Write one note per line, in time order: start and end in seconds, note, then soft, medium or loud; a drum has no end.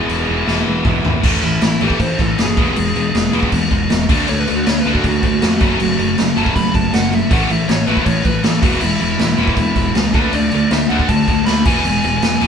0.00 0.45 E2 medium
0.00 0.46 B2 medium
0.00 0.26 E3 medium
0.00 0.27 G#3 loud
0.00 0.27 B3 loud
0.00 0.25 E4 medium
0.00 0.83 G#4 medium
0.00 0.83 G#5 medium
0.09 0.24 E1 medium
0.09 crash medium
0.27 0.43 E1 medium
0.27 0.82 E3 medium
0.27 0.84 G#3 medium
0.27 0.84 B3 medium
0.27 0.83 E4 medium
0.47 0.62 E1 medium
0.47 1.22 E2 medium
0.47 1.22 B2 medium
0.47 1.22 E3 medium
0.47 snare medium
0.67 0.81 E1 medium
0.84 0.99 E1 medium
0.84 1.22 E3 medium
0.84 1.22 G#3 medium
0.84 1.23 B3 medium
0.84 1.23 E4 medium
0.84 kick medium
0.84 mid tom medium
1.05 1.19 G#1 medium
1.05 floor tom medium
1.22 1.38 A1 medium
1.22 1.41 A2 medium
1.22 1.41 E3 medium
1.22 1.42 A3 loud
1.22 kick loud
1.22 crash loud
1.22 crash medium
1.42 1.57 A1 medium
1.42 1.59 A2 medium
1.42 1.60 E3 medium
1.42 1.80 E4 medium
1.42 crash medium
1.61 1.77 A1 medium
1.61 1.79 A2 medium
1.61 1.79 E3 medium
1.61 snare loud
1.61 crash medium
1.81 1.96 A1 medium
1.81 1.99 A2 medium
1.81 1.99 E3 loud
1.81 1.99 A3 medium
1.81 2.00 G4 medium
1.81 crash medium
1.90 kick medium
2.00 2.14 A1 medium
2.00 2.17 A2 medium
2.00 2.17 E3 medium
2.00 2.19 C5 medium
2.00 kick medium
2.00 crash medium
2.19 2.33 A1 medium
2.19 2.37 A2 medium
2.19 2.37 E3 medium
2.19 2.38 A4 medium
2.19 kick medium
2.19 crash medium
2.38 2.53 F#1 medium
2.38 2.56 A2 medium
2.38 2.56 E3 medium
2.38 3.49 G#4 medium
2.38 snare loud
2.38 crash medium
2.57 2.71 E1 medium
2.57 2.75 E2 medium
2.57 2.75 B2 medium
2.57 2.75 E3 loud
2.57 2.75 G#3 loud
2.57 2.76 B3 loud
2.57 kick loud
2.57 crash medium
2.76 2.91 E1 medium
2.76 2.94 E2 medium
2.76 2.94 B2 medium
2.76 2.93 E3 medium
2.76 2.93 G#3 medium
2.76 crash medium
2.95 3.10 E1 medium
2.95 3.13 E2 medium
2.95 3.13 B2 medium
2.95 3.13 E3 medium
2.95 3.13 G#3 medium
2.95 crash medium
3.15 3.29 E1 medium
3.15 3.31 E2 medium
3.15 3.32 B2 medium
3.15 3.32 E3 medium
3.15 3.32 G#3 medium
3.15 snare loud
3.15 crash medium
3.33 3.47 E1 medium
3.33 3.51 E2 medium
3.33 3.51 B2 loud
3.33 3.51 E3 loud
3.33 3.51 G#3 medium
3.33 3.52 B3 loud
3.33 crash medium
3.43 kick medium
3.52 3.66 E1 medium
3.52 3.69 E2 medium
3.52 3.69 B2 medium
3.52 3.70 E3 medium
3.52 3.70 G#3 medium
3.52 kick medium
3.52 crash medium
3.71 3.85 E1 medium
3.71 3.88 E2 medium
3.71 3.88 B2 medium
3.71 3.88 E3 medium
3.71 3.88 G#3 medium
3.71 kick medium
3.71 crash medium
3.90 4.05 E1 loud
3.90 4.07 E2 medium
3.90 4.08 B2 medium
3.90 4.07 E3 medium
3.90 4.08 G#3 medium
3.90 snare loud
3.90 crash medium
4.09 4.23 D2 medium
4.09 4.27 D3 medium
4.09 4.27 A3 loud
4.09 4.27 D4 loud
4.09 kick loud
4.09 crash loud
4.28 4.44 D2 medium
4.28 4.46 D3 medium
4.28 4.46 A3 medium
4.28 4.40 C#5 loud
4.28 crash medium
4.40 4.52 B4 medium
4.47 4.63 D2 medium
4.47 4.64 D3 medium
4.47 4.65 A3 medium
4.47 crash medium
4.56 4.67 F#4 loud
4.66 4.81 D2 medium
4.66 4.84 D3 medium
4.66 4.84 A3 medium
4.66 4.79 C#5 loud
4.66 snare loud
4.66 crash medium
4.80 4.92 B4 medium
4.84 5.00 D2 loud
4.84 5.03 D3 medium
4.84 5.03 A3 medium
4.84 5.04 D4 loud
4.84 crash medium
4.93 5.04 F#4 medium
4.93 kick medium
5.04 5.18 D2 medium
5.04 5.21 D3 medium
5.04 5.22 A3 medium
5.04 6.15 F#4 loud
5.04 kick loud
5.04 crash medium
5.23 5.37 D2 medium
5.23 5.40 D3 medium
5.23 5.40 A3 medium
5.23 kick medium
5.23 crash medium
5.41 5.57 F2 medium
5.41 5.59 D3 medium
5.41 5.59 A3 medium
5.41 snare loud
5.41 crash medium
5.60 5.75 F#1 medium
5.60 5.79 F#2 medium
5.60 5.79 C#3 medium
5.60 5.78 F#3 medium
5.60 5.79 A3 medium
5.60 5.79 C#4 loud
5.60 kick loud
5.60 crash medium
5.79 5.94 F#1 medium
5.79 5.97 F#2 medium
5.79 5.97 C#3 medium
5.79 5.96 F#3 medium
5.79 5.97 A3 medium
5.79 crash medium
5.97 6.13 F#1 medium
5.97 6.16 F#2 medium
5.97 6.17 C#3 medium
5.97 6.15 F#3 medium
5.97 6.15 A3 medium
5.97 crash medium
6.18 6.32 F#1 medium
6.18 6.35 F#2 medium
6.18 6.35 C#3 medium
6.18 6.35 F#3 medium
6.18 6.35 A3 medium
6.18 snare loud
6.18 crash medium
6.36 6.51 F#1 medium
6.36 6.53 F#2 medium
6.36 6.54 C#3 medium
6.36 6.54 F#3 medium
6.36 6.55 A3 loud
6.36 6.55 C#4 loud
6.36 6.55 A5 medium
6.36 crash medium
6.46 kick medium
6.55 6.69 F#1 medium
6.55 6.72 F#2 medium
6.55 6.72 C#3 medium
6.55 6.73 F#3 medium
6.55 6.73 A3 medium
6.55 6.75 B5 medium
6.55 kick loud
6.55 crash medium
6.73 6.88 F#1 medium
6.73 6.91 F#2 medium
6.73 6.91 C#3 medium
6.73 6.92 F#3 medium
6.73 6.92 A3 medium
6.73 6.93 A5 medium
6.73 kick medium
6.73 crash medium
6.93 7.21 F#1 medium
6.93 7.10 F#2 medium
6.93 7.10 C#3 medium
6.93 7.10 F#3 medium
6.93 7.11 A3 medium
6.93 7.15 F#5 medium
6.93 snare loud
6.93 crash medium
7.11 7.29 F#2 medium
7.11 7.29 C#3 medium
7.11 7.29 F#3 medium
7.11 7.29 A3 medium
7.11 7.32 E5 medium
7.11 crash medium
7.30 7.45 A1 medium
7.30 7.49 A2 medium
7.30 7.49 E3 loud
7.30 7.49 A3 loud
7.30 7.51 F#5 medium
7.30 kick loud
7.30 crash medium
7.50 7.64 A1 medium
7.50 7.67 A2 medium
7.50 7.67 E3 medium
7.50 7.69 E5 medium
7.50 crash medium
7.68 7.83 A1 medium
7.68 7.86 A2 medium
7.68 7.86 E3 medium
7.68 7.86 C#5 medium
7.68 snare loud
7.68 crash medium
7.87 8.02 A1 loud
7.87 8.04 A2 medium
7.87 8.05 E3 medium
7.87 8.06 A3 medium
7.87 8.05 B4 medium
7.87 crash medium
7.97 kick medium
8.05 8.20 A1 medium
8.05 8.23 A2 medium
8.05 8.23 E3 medium
8.05 8.25 C#5 medium
8.05 kick medium
8.05 crash medium
8.25 8.39 A1 medium
8.25 8.43 A2 medium
8.25 8.43 E3 medium
8.25 8.44 B4 medium
8.25 kick medium
8.25 crash medium
8.44 8.58 A1 loud
8.44 8.61 A2 medium
8.44 8.61 E3 medium
8.44 8.62 A4 medium
8.44 snare loud
8.44 crash medium
8.61 8.77 E1 medium
8.61 8.78 E2 medium
8.61 8.79 B2 medium
8.61 8.80 E3 loud
8.61 8.80 G#3 medium
8.61 8.81 B3 loud
8.61 8.81 F#4 medium
8.61 kick loud
8.61 crash loud
8.80 8.96 E1 medium
8.80 8.98 E2 medium
8.80 8.98 B2 medium
8.80 8.99 E3 medium
8.80 8.99 G#3 medium
8.80 9.91 E4 loud
8.80 crash medium
9.00 9.15 E1 medium
9.00 9.17 E2 medium
9.00 9.17 B2 medium
9.00 9.17 E3 medium
9.00 9.18 G#3 medium
9.00 crash medium
9.19 9.34 E1 loud
9.19 9.36 E2 medium
9.19 9.37 B2 medium
9.19 9.35 E3 medium
9.19 9.36 G#3 medium
9.19 snare loud
9.19 crash medium
9.36 9.53 E1 loud
9.36 9.56 E2 medium
9.36 9.56 B2 loud
9.36 9.55 E3 medium
9.36 9.56 G#3 loud
9.36 9.56 B3 medium
9.36 crash medium
9.48 kick medium
9.57 9.71 E1 medium
9.57 9.75 E2 medium
9.57 9.75 B2 medium
9.57 9.75 E3 medium
9.57 9.75 G#3 medium
9.57 kick medium
9.57 crash medium
9.75 9.90 E1 loud
9.75 9.94 E2 medium
9.75 9.94 B2 medium
9.75 9.93 E3 medium
9.75 9.94 G#3 medium
9.75 kick medium
9.75 crash medium
9.94 10.09 C#2 loud
9.94 10.12 E2 medium
9.94 10.12 B2 medium
9.94 10.12 E3 medium
9.94 10.12 G#3 medium
9.94 snare loud
9.94 crash medium
10.13 10.28 D2 medium
10.13 10.31 D3 loud
10.13 10.32 A3 medium
10.13 10.32 D4 loud
10.13 10.33 B4 loud
10.13 kick loud
10.13 crash medium
10.33 10.47 D2 loud
10.33 10.50 D3 medium
10.33 10.50 A3 medium
10.33 10.70 D5 medium
10.33 crash medium
10.51 10.66 D2 medium
10.51 10.69 D3 medium
10.51 10.69 A3 medium
10.51 crash medium
10.71 10.85 D2 medium
10.71 10.88 D3 medium
10.71 10.88 A3 medium
10.71 10.90 E5 medium
10.71 snare loud
10.71 crash medium
10.89 11.04 D2 loud
10.89 11.07 D3 loud
10.89 11.08 A3 loud
10.89 11.08 D4 loud
10.89 11.08 F#5 loud
10.89 crash medium
10.99 kick medium
11.09 11.23 D2 medium
11.09 11.26 D3 medium
11.09 11.26 A3 medium
11.09 11.45 A5 loud
11.09 kick loud
11.09 crash medium
11.28 11.41 D2 loud
11.28 11.45 D3 medium
11.28 11.45 A3 medium
11.28 kick medium
11.28 crash medium
11.46 11.61 D2 medium
11.46 11.64 D3 medium
11.46 11.65 A3 medium
11.46 11.64 B5 medium
11.46 snare loud
11.46 crash medium
11.65 11.79 E1 medium
11.65 11.83 E2 medium
11.65 11.84 B2 loud
11.65 11.84 E3 loud
11.65 11.84 G#3 loud
11.65 11.84 B3 medium
11.65 12.47 G#5 loud
11.65 kick loud
11.65 crash loud
11.85 11.98 E1 medium
11.85 12.02 E2 medium
11.85 12.02 B2 medium
11.85 12.02 E3 medium
11.85 12.02 G#3 medium
11.85 crash medium
12.03 12.18 E1 medium
12.03 12.21 E2 medium
12.03 12.21 B2 medium
12.03 12.20 E3 medium
12.03 12.21 G#3 medium
12.03 crash medium
12.22 12.36 E1 medium
12.22 12.39 E2 medium
12.22 12.39 B2 medium
12.22 12.40 E3 medium
12.22 12.40 G#3 medium
12.22 snare loud
12.22 crash medium
12.40 12.47 E1 loud
12.40 12.47 E2 medium
12.40 12.47 B2 loud
12.40 12.47 E3 medium
12.40 12.47 G#3 loud
12.40 12.47 B3 loud
12.40 crash medium